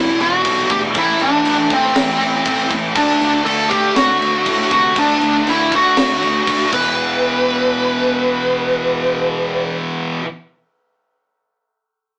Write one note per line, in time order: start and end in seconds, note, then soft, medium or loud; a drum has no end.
0.00 0.31 E1 loud
0.00 0.18 E2 medium
0.00 0.68 E2 medium
0.00 0.18 B2 loud
0.00 0.69 B2 loud
0.00 0.68 E3 loud
0.00 0.10 E3 medium
0.00 0.10 G3 medium
0.00 0.21 E4 loud
0.11 0.18 E3 medium
0.11 0.18 G3 medium
0.18 0.43 E2 medium
0.18 0.43 B2 medium
0.18 0.25 E3 medium
0.18 0.25 G3 medium
0.18 0.71 F#4 loud
0.18 crash medium
0.26 0.33 E3 medium
0.26 0.33 G3 medium
0.34 0.41 E3 medium
0.34 0.42 G3 medium
0.41 0.48 E3 medium
0.41 0.49 G3 medium
0.41 kick loud
0.41 crash loud
0.45 0.63 B1 loud
0.45 0.69 E2 loud
0.45 0.69 B2 medium
0.45 0.56 E3 medium
0.49 0.56 G3 medium
0.56 0.64 E3 medium
0.56 0.64 G3 medium
0.64 0.71 E3 medium
0.64 0.72 G3 medium
0.69 0.88 D2 loud
0.69 0.93 E2 medium
0.69 0.93 B2 loud
0.69 0.79 E3 medium
0.69 0.79 G3 medium
0.69 0.78 G4 loud
0.69 kick loud
0.69 crash medium
0.80 0.87 E3 medium
0.80 0.87 G3 medium
0.87 0.95 E3 medium
0.87 0.95 G3 medium
0.94 1.13 A1 loud
0.94 1.01 A2 medium
0.94 1.04 E3 medium
0.94 1.19 A3 loud
0.94 1.22 E4 loud
0.94 kick loud
0.94 crash medium
1.02 1.09 A2 medium
1.02 1.11 E3 medium
1.11 1.17 A2 medium
1.11 1.19 E3 medium
1.18 1.38 A1 loud
1.18 1.25 A2 medium
1.18 1.27 E3 medium
1.18 crash medium
1.22 1.33 A2 medium
1.22 1.73 D4 loud
1.28 1.35 E3 medium
1.34 1.42 A2 medium
1.34 1.42 E3 medium
1.42 1.81 A1 loud
1.42 1.50 A2 medium
1.42 1.50 E3 medium
1.42 crash medium
1.50 1.56 A2 medium
1.50 1.58 E3 medium
1.57 1.64 A2 medium
1.57 1.66 E3 medium
1.65 1.72 A2 medium
1.65 1.73 E3 medium
1.70 1.79 A2 medium
1.70 1.81 E3 medium
1.70 1.94 A3 loud
1.70 2.69 C4 medium
1.70 kick loud
1.70 crash medium
1.80 1.87 A2 medium
1.80 1.89 E3 medium
1.87 1.94 A2 medium
1.87 1.96 E3 medium
1.95 2.14 A1 loud
1.95 2.03 A2 medium
1.95 2.04 E3 medium
1.95 snare loud
1.95 crash loud
2.04 2.11 A2 medium
2.04 2.12 E3 medium
2.11 2.19 A2 medium
2.11 2.18 E3 medium
2.18 2.39 A1 medium
2.18 2.26 A2 medium
2.18 2.26 E3 medium
2.18 crash medium
2.26 2.34 A2 medium
2.26 2.35 E3 medium
2.35 2.42 A2 medium
2.35 2.43 E3 medium
2.42 2.49 A2 medium
2.42 2.50 E3 medium
2.42 kick loud
2.42 crash loud
2.46 2.64 A1 medium
2.46 2.56 A2 medium
2.46 2.57 E3 medium
2.46 2.70 A3 loud
2.57 2.65 A2 medium
2.57 2.65 E3 medium
2.66 2.72 A2 medium
2.66 2.74 E3 medium
2.66 2.97 A3 medium
2.71 2.89 A1 medium
2.71 2.80 A2 medium
2.71 2.81 E3 medium
2.71 kick medium
2.71 crash medium
2.80 2.88 A2 medium
2.80 2.88 E3 medium
2.88 2.96 A2 medium
2.88 2.95 E3 medium
2.95 3.14 D2 loud
2.95 3.03 D3 medium
2.95 3.04 A3 medium
2.95 3.47 D4 loud
2.95 3.19 D4 loud
2.95 kick loud
2.95 crash loud
3.04 3.11 D3 medium
3.04 3.12 A3 medium
3.11 3.18 D3 medium
3.11 3.18 A3 medium
3.19 3.39 D2 loud
3.19 3.25 D3 medium
3.19 3.26 A3 medium
3.19 crash medium
3.26 3.33 D3 medium
3.26 3.34 A3 medium
3.34 3.41 D3 medium
3.34 3.41 A3 medium
3.41 3.49 D3 medium
3.41 3.49 A3 medium
3.45 3.64 D2 medium
3.45 3.68 D3 medium
3.45 3.71 A4 loud
3.45 crash medium
3.50 3.56 D3 medium
3.50 3.57 A3 medium
3.57 3.64 D3 medium
3.57 3.65 A3 medium
3.64 3.71 D3 medium
3.64 3.73 A3 medium
3.70 3.89 D2 loud
3.70 3.79 D3 medium
3.70 3.94 D4 loud
3.70 3.96 G4 loud
3.70 kick loud
3.70 crash medium
3.74 3.80 A3 loud
3.80 3.87 D3 medium
3.80 3.87 A3 medium
3.88 3.95 D3 medium
3.88 3.95 A3 medium
3.95 4.32 D2 medium
3.95 4.03 D3 medium
3.95 4.03 A3 medium
3.95 4.71 F#4 loud
3.95 snare loud
3.95 crash medium
4.03 4.10 D3 medium
4.03 4.11 A3 medium
4.10 4.18 D3 medium
4.10 4.19 A3 medium
4.19 4.25 D3 medium
4.19 4.26 A3 medium
4.19 crash medium
4.26 4.33 D3 medium
4.26 4.34 A3 medium
4.33 4.41 D3 medium
4.33 4.42 A3 medium
4.42 4.48 D3 medium
4.42 4.49 A3 medium
4.42 4.70 D4 loud
4.46 4.64 A2 medium
4.46 4.56 D3 medium
4.46 4.57 A3 medium
4.46 kick medium
4.46 crash loud
4.57 4.64 D3 medium
4.57 4.65 A3 medium
4.65 4.72 D3 medium
4.65 4.73 A3 medium
4.70 4.89 C3 loud
4.70 4.80 D3 medium
4.70 4.80 A3 medium
4.70 4.94 D4 loud
4.70 4.98 F#4 medium
4.70 kick loud
4.70 crash medium
4.80 4.87 D3 medium
4.80 4.88 A3 medium
4.87 4.95 D3 medium
4.87 4.96 A3 medium
4.95 5.15 D2 loud
4.95 5.04 D3 medium
4.95 5.04 A3 loud
4.95 5.19 D4 loud
4.95 5.49 D4 loud
4.95 kick loud
4.95 crash medium
5.04 5.11 D3 medium
5.04 5.12 A3 medium
5.12 5.19 D3 medium
5.12 5.19 A3 medium
5.19 5.40 D2 loud
5.19 5.27 D3 medium
5.19 5.27 A3 medium
5.19 crash medium
5.27 5.34 D3 medium
5.27 5.35 A3 medium
5.35 5.43 D3 medium
5.35 5.43 A3 medium
5.43 5.49 D3 medium
5.43 5.50 A3 medium
5.43 crash medium
5.47 5.83 D2 loud
5.47 5.57 D3 medium
5.47 5.58 A3 medium
5.47 5.74 E4 medium
5.58 5.65 D3 medium
5.58 5.65 A3 medium
5.65 5.73 D3 medium
5.65 5.73 A3 medium
5.72 5.79 D3 medium
5.72 5.81 A3 medium
5.72 5.96 D4 medium
5.72 6.70 F#4 loud
5.72 kick medium
5.72 crash medium
5.80 5.87 D3 medium
5.80 5.88 A3 medium
5.88 5.95 D3 medium
5.88 5.96 A3 medium
5.95 6.15 D2 loud
5.95 6.02 D3 medium
5.95 6.03 A3 medium
5.95 snare loud
5.95 crash medium
6.03 6.10 D3 medium
6.03 6.11 A3 medium
6.12 6.19 D3 medium
6.12 6.19 A3 medium
6.19 6.41 D2 medium
6.19 6.27 D3 medium
6.19 6.27 A3 medium
6.19 crash medium
6.27 6.34 D3 medium
6.27 6.34 A3 medium
6.34 6.41 D3 medium
6.34 6.42 A3 medium
6.42 6.49 D3 medium
6.42 6.49 A3 medium
6.47 6.66 D2 medium
6.47 6.57 D3 medium
6.47 6.57 A3 medium
6.47 6.72 D4 loud
6.47 kick loud
6.47 crash loud
6.58 6.64 D3 medium
6.58 6.64 A3 medium
6.65 6.72 D3 medium
6.65 6.72 A3 medium
6.72 9.73 E1 loud
6.72 10.22 E2 loud
6.72 10.24 B2 loud
6.72 9.74 B4 medium
6.72 kick loud
6.72 crash medium
6.76 10.26 E3 loud